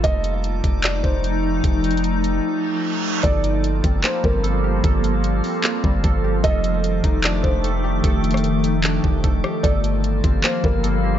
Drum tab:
HH |x-----x-----x-----x-----x-----------x-----------|x-----x-x-x-x-----x-----------------------------|x-----x-----x-----x-----x-----------x-----------|x-----x-----x-----o-----x-----------x-----------|
CP |------------------------x-----------------------|------------------------------------------------|------------------------x-----------------------|------------------------x-----------------------|
SD |------------------------------------------------|------------------------------------------------|------------------------------------------------|------------------------------------------------|
BD |o-----------------o-----------o-----------------|o-----------------------------------------------|o-----------------o-----------o-----------------|o-----------------------------o-----o-----------|

HH |x-----x-----x-----x-----x-----------x-----------|x-----x-x-x-x-----x-----x-----------x-----------|x-----x-----x-----x-----x-----------x-----------|
CP |------------------------x-----------------------|------------------------x-----------------------|------------------------x-----------------------|
SD |------------------------------------------------|---------r--------------------------------r-----|------------------------------------------------|
BD |o-----------------o-----------o-----------------|o-----------------------------o-----o-----------|o-----------------o-----------o-----------------|